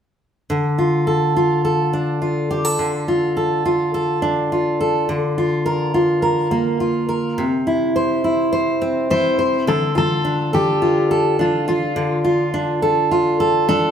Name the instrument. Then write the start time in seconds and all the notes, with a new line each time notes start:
steel-string acoustic guitar
0.50 D3
0.78 F4
1.07 A4
1.36 F4
1.65 A4
1.93 D4
2.22 F4
2.51 G4
2.65 A4
2.79 D3
3.08 F4
3.37 A4
3.65 F4
3.94 A4
4.22 D4
4.52 F4
4.81 A4
5.09 D3
5.38 F4
5.66 A#4
5.94 F4
6.22 A#4
6.51 A#3
6.80 F4
7.09 A#4
7.38 C3
7.67 E4
7.96 C5
8.24 E4
8.53 C5
8.81 C4
9.10 E4 C5
9.39 C5
9.67 D3 A4
9.95 F4 A4
10.25 D4
10.53 G4 A4
10.82 F4
11.11 A4
11.39 D4 F4
11.68 F4
11.96 D3
12.24 F4
12.54 D4
12.82 A4
13.11 F4
13.40 A4
13.69 D4 A4